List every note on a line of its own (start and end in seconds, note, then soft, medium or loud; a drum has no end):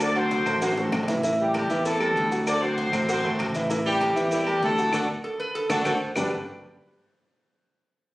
0.00 0.41 D2 loud
0.00 0.13 A3 medium
0.00 0.16 D4 loud
0.00 0.15 F#4 medium
0.00 0.13 A4 medium
0.00 0.15 A4 medium
0.00 0.13 C5 medium
0.00 0.16 D5 loud
0.00 cowbell loud
0.00 low agogo loud
0.00 claves medium
0.00 maracas loud
0.15 0.41 F#3 loud
0.15 0.62 C4 loud
0.15 0.41 F#4 loud
0.15 0.61 F#4 medium
0.15 0.61 A4 medium
0.15 0.62 C5 loud
0.15 0.41 F#5 loud
0.15 high conga soft
0.15 low agogo medium
0.15 maracas soft
0.31 cowbell medium
0.31 high conga loud
0.31 maracas soft
0.46 0.90 A1 loud
0.46 0.59 A3 medium
0.46 0.59 A4 medium
0.46 0.59 C5 medium
0.46 cowbell medium
0.46 low conga medium
0.46 low agogo loud
0.46 claves medium
0.46 maracas medium
0.61 0.74 F#3 loud
0.61 0.70 C4 medium
0.61 0.75 F#4 medium
0.61 0.77 F#4 medium
0.61 1.20 A4 medium
0.61 0.70 C5 loud
0.61 0.75 F#5 medium
0.61 cowbell loud
0.61 high timbale medium
0.61 low agogo medium
0.61 maracas medium
0.72 high timbale loud
0.77 1.07 F#3 medium
0.77 1.03 A3 medium
0.77 1.21 A3 medium
0.77 1.21 C4 medium
0.77 1.07 F#4 medium
0.77 1.03 A4 medium
0.77 1.03 C5 medium
0.77 high bongo medium
0.77 maracas soft
0.83 low timbale medium
0.92 1.64 A1 loud
0.92 cowbell medium
0.92 low bongo loud
0.92 high conga medium
0.92 low agogo loud
0.92 claves medium
0.92 maracas soft
1.03 low timbale loud
1.08 1.21 E3 medium
1.08 1.21 E4 medium
1.08 1.21 E5 medium
1.08 cowbell medium
1.08 low bongo medium
1.08 high conga medium
1.08 low agogo medium
1.08 maracas medium
1.13 low timbale medium
1.23 1.49 E3 medium
1.23 1.49 E4 medium
1.23 1.49 E5 loud
1.23 cowbell loud
1.23 low agogo medium
1.23 maracas medium
1.40 1.54 G3 medium
1.40 1.54 G4 medium
1.40 maracas soft
1.54 1.67 G3 medium
1.54 1.84 G3 medium
1.54 1.85 C4 medium
1.54 1.85 E4 medium
1.54 1.68 G4 medium
1.54 1.84 G4 loud
1.54 1.68 A4 medium
1.54 cowbell medium
1.54 high conga loud
1.54 low agogo loud
1.54 claves medium
1.54 maracas soft
1.70 2.13 E2 loud
1.70 1.95 E3 loud
1.70 1.95 E4 medium
1.70 1.96 E5 medium
1.70 cowbell medium
1.70 maracas medium
1.85 2.43 A3 loud
1.85 2.43 C4 medium
1.85 2.43 E4 medium
1.85 2.43 A4 loud
1.85 cowbell loud
1.85 low agogo medium
1.85 maracas loud
2.00 2.13 G3 medium
2.00 2.13 G4 medium
2.00 2.13 A4 medium
2.00 high conga soft
2.00 low agogo loud
2.00 claves medium
2.00 maracas soft
2.15 2.88 D2 loud
2.15 2.28 G3 medium
2.15 2.29 G4 medium
2.15 2.29 A4 medium
2.15 cowbell medium
2.15 low timbale medium
2.15 maracas soft
2.31 2.44 F#3 medium
2.31 2.44 F#4 medium
2.31 2.44 F#5 loud
2.31 cowbell medium
2.31 maracas medium
2.46 2.59 A3 medium
2.46 2.63 D4 loud
2.46 2.61 F#4 medium
2.46 2.59 A4 medium
2.46 2.61 A4 medium
2.46 2.60 C5 medium
2.46 2.63 D5 loud
2.46 cowbell loud
2.46 high conga soft
2.46 low agogo loud
2.46 claves medium
2.46 maracas loud
2.62 2.87 F#3 medium
2.62 3.08 C4 loud
2.62 2.88 F#4 loud
2.62 3.09 F#4 medium
2.62 3.09 A4 medium
2.62 3.08 C5 loud
2.62 2.88 F#5 loud
2.62 high conga soft
2.62 low agogo medium
2.62 maracas soft
2.78 cowbell medium
2.78 high conga medium
2.78 maracas soft
2.92 3.22 A1 loud
2.92 3.05 A3 medium
2.92 3.06 A4 medium
2.92 3.06 C5 medium
2.92 cowbell medium
2.92 low conga medium
2.92 low agogo loud
2.92 claves medium
2.92 maracas medium
3.09 3.21 F#3 medium
3.09 3.23 C4 loud
3.09 3.22 F#4 loud
3.09 3.24 F#4 medium
3.09 3.67 A4 medium
3.09 3.23 C5 loud
3.09 3.22 F#5 medium
3.09 cowbell loud
3.09 low agogo medium
3.09 maracas loud
3.23 3.38 G1 medium
3.23 3.55 F#3 medium
3.23 3.49 A3 medium
3.23 3.68 A3 medium
3.23 3.68 C4 medium
3.23 3.55 F#4 medium
3.23 3.49 A4 medium
3.23 3.50 C5 medium
3.23 high conga soft
3.23 maracas soft
3.39 4.11 A1 loud
3.39 cowbell medium
3.39 high conga medium
3.39 low timbale medium
3.39 low agogo loud
3.39 claves medium
3.39 maracas soft
3.54 3.68 E3 medium
3.54 3.68 E4 medium
3.54 3.68 E5 medium
3.54 cowbell medium
3.54 high conga loud
3.54 low agogo medium
3.54 maracas medium
3.70 3.95 E3 medium
3.70 3.95 E4 medium
3.70 3.96 E5 medium
3.70 cowbell loud
3.70 high conga soft
3.70 low agogo loud
3.70 maracas loud
3.86 4.29 G3 loud
3.86 4.32 C4 medium
3.86 4.31 E4 medium
3.86 4.29 G4 loud
3.86 maracas soft
4.01 4.13 G3 medium
4.01 4.13 G4 medium
4.01 4.14 A4 medium
4.01 cowbell medium
4.01 high conga medium
4.01 low agogo loud
4.01 claves medium
4.01 maracas soft
4.16 4.59 E2 loud
4.16 4.41 E3 loud
4.16 4.41 E4 medium
4.16 4.41 E5 loud
4.16 cowbell medium
4.16 maracas medium
4.31 4.61 G3 loud
4.31 4.63 C4 medium
4.31 4.63 E4 medium
4.31 4.61 G4 loud
4.31 cowbell loud
4.31 low agogo medium
4.31 maracas loud
4.47 4.60 G3 medium
4.47 4.60 G4 medium
4.47 4.60 A4 medium
4.47 low agogo loud
4.47 claves medium
4.47 maracas soft
4.62 4.91 D2 loud
4.62 4.75 G3 medium
4.62 4.92 A3 loud
4.62 4.92 C4 medium
4.62 4.92 E4 medium
4.62 4.75 G4 medium
4.62 4.75 A4 medium
4.62 4.92 A4 loud
4.62 cowbell medium
4.62 low timbale medium
4.62 maracas soft
4.78 4.90 F#3 medium
4.78 4.90 F#4 medium
4.78 4.91 F#5 medium
4.78 cowbell medium
4.78 maracas medium
4.93 5.04 D2 loud
4.93 5.01 A3 medium
4.93 5.01 D4 loud
4.93 5.03 D4 loud
4.93 5.01 F#4 loud
4.93 5.03 F#4 loud
4.93 5.01 A4 loud
4.93 5.03 A4 loud
4.93 cowbell loud
4.93 low conga loud
4.93 high timbale loud
4.93 claves loud
4.93 maracas loud
5.24 5.40 A4 medium
5.40 5.54 B4 loud
5.55 5.68 A4 loud
5.69 5.81 D2 loud
5.69 5.78 A3 loud
5.69 5.80 D4 loud
5.69 5.78 D4 loud
5.69 5.80 F#4 medium
5.69 5.78 F#4 loud
5.69 5.75 A4 loud
5.69 5.80 A4 medium
5.69 5.78 A4 loud
5.69 cowbell loud
5.69 low conga loud
5.69 high timbale loud
5.69 claves medium
5.69 maracas loud
5.85 5.97 D2 loud
5.85 5.93 A3 medium
5.85 5.95 D4 medium
5.85 5.93 D4 loud
5.85 5.95 F#4 loud
5.85 5.93 F#4 loud
5.85 5.95 A4 loud
5.85 5.93 A4 loud
5.85 6.14 C5 loud
5.85 cowbell loud
5.85 low conga medium
5.85 high timbale loud
5.85 claves loud
5.85 maracas loud
6.15 6.30 G1 loud
6.15 6.31 D3 medium
6.15 6.30 G3 medium
6.15 6.30 D4 medium
6.15 6.31 D4 medium
6.15 6.30 F#4 medium
6.15 6.30 G4 medium
6.15 6.30 A4 medium
6.15 6.30 B4 medium
6.15 6.31 B4 loud
6.15 low bongo loud
6.15 low conga loud
6.15 low timbale medium
6.15 claves loud
6.15 maracas loud